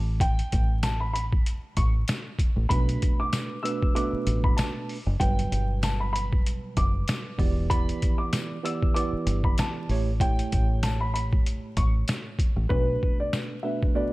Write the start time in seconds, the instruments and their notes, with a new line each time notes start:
Already playing: fingered electric bass A1
0.20 upright piano G5, kick, closed hi-hat
0.39 closed hi-hat
0.52 fingered electric bass A1, kick, closed hi-hat
0.83 upright piano A5, snare, closed hi-hat, tambourine
1.00 upright piano B5
1.13 upright piano B5, closed hi-hat
1.33 kick
1.46 closed hi-hat
1.77 fingered electric bass A1, upright piano C#6, kick, closed hi-hat
2.08 snare, closed hi-hat, tambourine
2.39 kick, closed hi-hat
2.56 fingered electric bass A1
2.69 fingered electric bass B1, tine electric piano B2 A3 D4 B4, upright piano B5, kick, closed hi-hat
2.89 closed hi-hat
3.02 kick, closed hi-hat
3.20 upright piano D6
3.33 snare, closed hi-hat, tambourine
3.63 tine electric piano B2 A3 D4 B4, upright piano E6, closed hi-hat
3.82 kick
3.95 tine electric piano B2 A3 D4 B4, upright piano D6, closed hi-hat
4.13 muted fingered electric bass stroke
4.27 fingered electric bass A1, closed hi-hat
4.44 upright piano B5, kick
4.57 upright piano A5, snare, closed hi-hat, tambourine
4.89 open hi-hat
5.07 fingered electric bass F#1
5.20 fingered electric bass G1, tine electric piano B2 F#3 G3 B4, upright piano G5, kick, closed hi-hat
5.39 closed hi-hat
5.52 fingered electric bass G1, closed hi-hat
5.83 upright piano A5, snare, closed hi-hat, tambourine
6.00 upright piano B5
6.13 upright piano B5, closed hi-hat
6.33 kick
6.46 closed hi-hat
6.77 fingered electric bass F#1, upright piano D6, kick, closed hi-hat
7.08 snare, closed hi-hat, tambourine
7.38 fingered electric bass E1, tine electric piano E3 B3 G4 D5, kick, open hi-hat
7.69 tine electric piano E3 B3 G4 D5, upright piano B5, kick, closed hi-hat
7.89 closed hi-hat
8.02 kick, closed hi-hat
8.18 upright piano D6
8.33 snare, closed hi-hat, tambourine
8.63 tine electric piano E3 B3 G4 D5, upright piano E6, closed hi-hat
8.83 kick
8.94 tine electric piano E3 B3 G4 D5, upright piano D6, closed hi-hat
9.13 muted fingered electric bass stroke
9.26 fingered electric bass G1, closed hi-hat
9.44 upright piano B5, kick
9.58 upright piano A5, snare, closed hi-hat, tambourine
9.89 fingered electric bass A1, tine electric piano A2 A3 G4 C#5, open hi-hat
10.20 tine electric piano A2 A3 G4 C#5, upright piano G5, kick, closed hi-hat
10.39 closed hi-hat
10.52 fingered electric bass A1, kick, closed hi-hat
10.83 upright piano A5, snare, closed hi-hat, tambourine
11.01 upright piano B5
11.14 upright piano B5, closed hi-hat
11.33 kick
11.46 closed hi-hat
11.77 fingered electric bass A1, upright piano C#6, kick, closed hi-hat
12.08 snare, closed hi-hat, tambourine
12.39 kick, closed hi-hat
12.56 fingered electric bass A1
12.69 fingered electric bass B1, tine electric piano B2 A3 D4 B4, upright piano B4, kick
13.03 kick
13.20 upright piano D5
13.33 snare, tambourine
13.63 tine electric piano B2 A3 D4 B4, upright piano E5
13.83 kick
13.95 tine electric piano B2 A3 D4 B4, upright piano D5